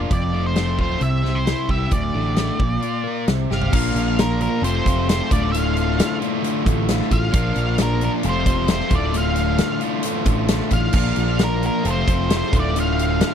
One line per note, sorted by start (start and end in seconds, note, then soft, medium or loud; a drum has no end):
0.00 0.10 A#2 medium
0.00 0.11 A#3 medium
0.00 0.11 D4 medium
0.00 0.11 F4 medium
0.00 0.11 A#4 medium
0.10 0.78 F1 medium
0.10 1.00 F2 medium
0.10 0.44 D5 medium
0.10 kick loud
0.10 closed hi-hat medium
0.33 1.02 F3 medium
0.33 1.02 A3 medium
0.46 0.78 C5 medium
0.55 1.01 A3 medium
0.55 1.02 C4 medium
0.55 snare medium
0.55 closed hi-hat soft
0.78 0.96 D1 medium
0.78 1.02 F4 medium
0.78 1.01 C5 medium
0.78 kick medium
1.00 1.53 C2 medium
1.00 1.92 C3 medium
1.00 1.37 E5 medium
1.00 closed hi-hat medium
1.23 1.92 C4 medium
1.23 1.92 C5 medium
1.23 snare soft
1.35 1.71 C5 medium
1.46 1.92 E4 medium
1.46 snare medium
1.46 closed hi-hat soft
1.69 1.86 C2 medium
1.69 1.92 G4 medium
1.69 1.92 E5 medium
1.69 kick medium
1.91 2.09 D1 medium
1.91 2.60 D2 medium
1.91 3.25 D5 medium
1.91 kick loud
1.91 closed hi-hat medium
2.15 2.50 A1 medium
2.15 2.61 A2 medium
2.15 2.61 D3 medium
2.36 2.61 D3 medium
2.36 2.60 A3 medium
2.36 snare medium
2.36 closed hi-hat medium
2.59 2.77 A#1 medium
2.59 3.28 A#2 medium
2.59 kick medium
2.82 3.29 F4 medium
2.82 closed hi-hat medium
3.04 3.27 A#3 medium
3.04 3.29 A#4 medium
3.27 3.45 C2 medium
3.27 3.72 C3 medium
3.27 snare medium
3.27 closed hi-hat medium
3.50 3.68 G1 medium
3.50 3.73 G4 medium
3.50 4.22 F5 medium
3.50 snare medium
3.61 floor tom medium
3.72 3.90 A#1 medium
3.72 4.62 A#2 medium
3.72 4.63 F3 medium
3.72 4.42 A#3 medium
3.72 4.41 D4 medium
3.72 4.41 F4 loud
3.72 4.40 A#4 medium
3.72 kick loud
3.72 crash loud
3.95 4.47 A#1 medium
3.95 closed hi-hat medium
4.19 4.41 A#4 medium
4.19 snare loud
4.19 closed hi-hat medium
4.41 4.64 A#3 medium
4.41 4.63 D4 medium
4.41 4.64 F4 medium
4.41 4.62 A#4 medium
4.41 4.64 A#4 medium
4.41 closed hi-hat medium
4.62 4.80 F1 loud
4.62 5.08 F2 medium
4.62 5.09 C3 medium
4.62 4.89 F3 medium
4.62 4.88 A3 loud
4.62 4.87 C4 loud
4.62 4.86 F4 medium
4.62 5.06 C5 medium
4.62 closed hi-hat medium
4.85 5.20 F1 medium
4.85 5.09 A3 medium
4.85 5.10 C4 medium
4.85 5.11 F4 medium
4.85 kick medium
4.85 closed hi-hat medium
4.90 5.09 F3 medium
5.09 5.33 F3 medium
5.09 5.31 A3 medium
5.09 5.31 C4 medium
5.09 5.32 F4 medium
5.09 5.30 C5 medium
5.09 snare loud
5.09 closed hi-hat medium
5.30 6.00 D1 medium
5.30 6.20 D2 medium
5.30 6.20 A2 medium
5.30 5.54 D3 medium
5.30 5.54 A3 medium
5.30 5.56 F4 medium
5.30 5.52 D5 medium
5.30 kick loud
5.30 closed hi-hat medium
5.34 5.53 D2 medium
5.34 5.53 A2 medium
5.52 6.41 D2 medium
5.52 6.42 A2 loud
5.52 6.22 D3 medium
5.52 6.21 A3 loud
5.52 6.17 F5 medium
5.52 closed hi-hat loud
5.56 6.21 F4 loud
5.77 closed hi-hat medium
5.99 snare loud
5.99 closed hi-hat loud
6.21 7.11 D2 medium
6.21 7.11 A2 medium
6.21 6.43 D3 medium
6.21 6.43 A3 medium
6.21 6.45 F4 medium
6.21 closed hi-hat medium
6.43 6.89 D2 medium
6.43 6.88 A2 medium
6.43 6.67 D3 loud
6.43 6.66 A3 medium
6.43 6.66 F4 medium
6.43 closed hi-hat medium
6.66 7.00 A1 loud
6.66 6.89 D3 medium
6.66 6.89 A3 medium
6.66 6.90 F4 medium
6.66 kick medium
6.66 closed hi-hat medium
6.88 7.33 A2 medium
6.88 7.12 D3 medium
6.88 7.11 A3 medium
6.88 7.11 F4 medium
6.88 snare loud
6.88 closed hi-hat medium
7.01 snare soft
7.11 7.28 A1 medium
7.11 7.34 D3 medium
7.11 7.34 A3 medium
7.11 7.35 F4 medium
7.11 7.76 F5 loud
7.11 kick medium
7.11 closed hi-hat medium
7.33 7.51 A#1 medium
7.33 8.23 A#2 medium
7.33 8.23 F3 loud
7.33 8.02 A#3 medium
7.33 8.01 D4 medium
7.33 8.02 F4 medium
7.33 8.00 A#4 loud
7.33 kick loud
7.33 closed hi-hat loud
7.56 8.08 A#1 medium
7.56 closed hi-hat medium
7.78 snare loud
7.78 closed hi-hat medium
7.82 8.03 A#4 medium
8.01 8.24 A#3 medium
8.01 8.23 D4 medium
8.01 8.25 F4 medium
8.01 8.23 A#4 medium
8.01 8.10 A#4 medium
8.01 closed hi-hat medium
8.23 8.46 F1 loud
8.23 8.69 F2 medium
8.23 8.69 C3 medium
8.23 8.48 F3 loud
8.23 8.47 A3 medium
8.23 8.46 C4 medium
8.23 8.46 F4 loud
8.23 closed hi-hat medium
8.29 8.70 C5 loud
8.46 8.81 E1 medium
8.46 8.69 F3 medium
8.46 8.69 A3 medium
8.46 8.70 C4 medium
8.46 8.71 F4 medium
8.46 kick medium
8.46 closed hi-hat medium
8.68 8.92 F3 medium
8.68 8.91 A3 medium
8.68 8.92 C4 medium
8.68 8.91 F4 medium
8.68 8.94 C5 medium
8.68 snare loud
8.68 closed hi-hat medium
8.80 snare soft
8.90 9.60 D1 medium
8.90 9.12 D2 medium
8.90 9.13 A2 medium
8.90 9.13 D3 medium
8.90 9.13 A3 medium
8.90 9.15 F4 medium
8.90 kick loud
8.90 closed hi-hat medium
8.96 9.15 D5 medium
9.13 10.03 D2 medium
9.13 10.04 A2 medium
9.13 9.82 D3 loud
9.13 9.81 A3 medium
9.13 9.80 F4 medium
9.13 closed hi-hat loud
9.18 9.80 F5 medium
9.36 closed hi-hat medium
9.58 snare medium
9.58 closed hi-hat medium
9.81 10.72 D2 medium
9.81 10.72 A2 medium
9.81 10.04 D3 medium
9.81 10.05 A3 medium
9.81 10.06 F4 medium
9.81 closed hi-hat medium
10.03 10.50 D2 medium
10.03 10.48 A2 medium
10.03 10.28 D3 medium
10.03 10.27 A3 medium
10.03 closed hi-hat loud
10.07 10.26 F4 medium
10.25 10.61 A1 loud
10.25 10.49 D3 medium
10.25 10.49 A3 medium
10.25 10.51 F4 medium
10.25 kick medium
10.25 closed hi-hat medium
10.48 10.94 A2 medium
10.48 10.73 D3 medium
10.48 10.71 A3 medium
10.48 10.71 F4 medium
10.48 snare loud
10.48 closed hi-hat loud
10.60 snare soft
10.71 10.89 A1 medium
10.71 10.94 D3 medium
10.71 10.94 A3 medium
10.71 10.95 F4 medium
10.71 11.43 F5 loud
10.71 kick medium
10.71 closed hi-hat medium
10.93 11.11 A#1 medium
10.93 11.84 A#2 medium
10.93 11.84 F3 medium
10.93 11.62 A#3 medium
10.93 11.62 D4 medium
10.93 11.62 F4 medium
10.93 11.60 A#4 medium
10.93 kick loud
10.93 crash loud
11.16 11.69 A#1 medium
11.16 closed hi-hat medium
11.39 snare loud
11.39 closed hi-hat medium
11.44 11.65 A#4 medium
11.62 11.85 A#3 medium
11.62 11.84 D4 medium
11.62 11.86 F4 medium
11.62 11.84 A#4 medium
11.62 closed hi-hat medium
11.66 11.86 A#4 medium
11.84 12.03 F1 loud
11.84 12.30 F2 medium
11.84 12.30 C3 medium
11.84 12.10 F3 medium
11.84 12.08 A3 loud
11.84 12.08 C4 medium
11.84 12.07 F4 loud
11.84 closed hi-hat medium
11.91 12.35 C5 loud
12.08 12.42 F1 medium
12.08 12.31 F3 medium
12.08 12.30 A3 medium
12.08 12.31 C4 medium
12.08 12.33 F4 medium
12.08 kick medium
12.08 closed hi-hat medium
12.30 12.53 F3 medium
12.30 12.52 A3 medium
12.30 12.53 C4 medium
12.30 12.52 F4 medium
12.30 snare loud
12.30 closed hi-hat medium
12.37 12.55 C5 medium
12.43 snare soft
12.53 13.22 D1 medium
12.53 12.74 D2 medium
12.53 12.75 A2 medium
12.53 12.75 D3 medium
12.53 12.75 A3 medium
12.53 12.77 F4 medium
12.53 kick loud
12.53 closed hi-hat medium
12.60 12.80 D5 medium
12.75 13.34 D2 medium
12.75 13.34 A2 medium
12.75 13.34 D3 medium
12.75 13.34 A3 loud
12.75 13.34 F4 loud
12.75 closed hi-hat loud
12.80 13.34 F5 medium
12.99 closed hi-hat medium
13.21 snare loud
13.21 closed hi-hat medium